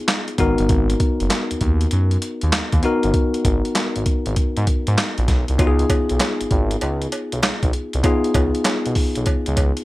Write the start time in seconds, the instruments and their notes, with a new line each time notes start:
Already playing: tine electric piano B3 D#4 F4 G#4
0.08 snare, clap, closed hi-hat
0.28 closed hi-hat
0.38 analog synth bass G#1, tine electric piano B3 D#4 F#4 A#4, kick, closed hi-hat
0.58 analog synth bass G1, closed hi-hat
0.69 analog synth bass G#1, kick, closed hi-hat
0.90 closed hi-hat
1.00 kick, closed hi-hat
1.20 analog synth bass F#1, closed hi-hat
1.30 snare, clap, closed hi-hat
1.51 analog synth bass D#2, closed hi-hat
1.61 analog synth bass D#2, kick, closed hi-hat
1.81 closed hi-hat
1.91 analog synth bass F#2, closed hi-hat
2.11 closed hi-hat
2.22 closed hi-hat
2.41 analog synth bass D#2, closed hi-hat
2.52 analog synth bass D#2, snare, clap, closed hi-hat
2.72 analog synth bass D#2, kick, closed hi-hat
2.83 tine electric piano B3 D#4 F#4 A#4, closed hi-hat
3.03 analog synth bass G1, closed hi-hat
3.14 kick, closed hi-hat
3.34 closed hi-hat
3.45 analog synth bass G#1, kick, closed hi-hat
3.65 closed hi-hat
3.75 snare, clap, closed hi-hat
3.96 analog synth bass G#1, closed hi-hat
4.06 kick, closed hi-hat
4.26 analog synth bass G#1, closed hi-hat
4.36 kick, closed hi-hat
4.57 analog synth bass G#2, closed hi-hat
4.67 kick, closed hi-hat
4.87 analog synth bass G#2, closed hi-hat
4.98 snare, clap, closed hi-hat
5.18 analog synth bass A#1, closed hi-hat
5.28 analog synth bass B1, kick, snare, closed hi-hat
5.48 analog synth bass C2, closed hi-hat
5.58 analog synth bass C#2, tine electric piano B3 D#4 F4 F#4, kick, closed hi-hat, cowbell
5.67 tine electric piano G#4
5.79 closed hi-hat
5.90 kick, closed hi-hat, cowbell
6.09 analog synth bass B1, closed hi-hat
6.20 snare, clap, closed hi-hat, cowbell
6.41 analog synth bass G#1, closed hi-hat
6.51 analog synth bass G#1, kick, closed hi-hat
6.71 closed hi-hat
6.81 analog synth bass C#2, closed hi-hat, cowbell
7.02 closed hi-hat
7.12 closed hi-hat, cowbell
7.32 analog synth bass B1, closed hi-hat
7.43 analog synth bass B1, snare, clap, closed hi-hat, cowbell
7.63 analog synth bass B1, kick, closed hi-hat
7.73 closed hi-hat
7.93 analog synth bass C2, closed hi-hat
8.03 tine electric piano B3 D#4 F4 G#4, kick, closed hi-hat, cowbell
8.24 closed hi-hat
8.34 analog synth bass C#2, kick, closed hi-hat, cowbell
8.55 closed hi-hat
8.65 snare, clap, closed hi-hat, cowbell
8.86 analog synth bass B1, closed hi-hat
8.95 kick, open hi-hat
9.15 analog synth bass B1, closed hi-hat
9.26 analog synth bass C#2, kick, closed hi-hat, cowbell
9.46 analog synth bass C#2, closed hi-hat
9.57 kick, closed hi-hat, cowbell
9.77 closed hi-hat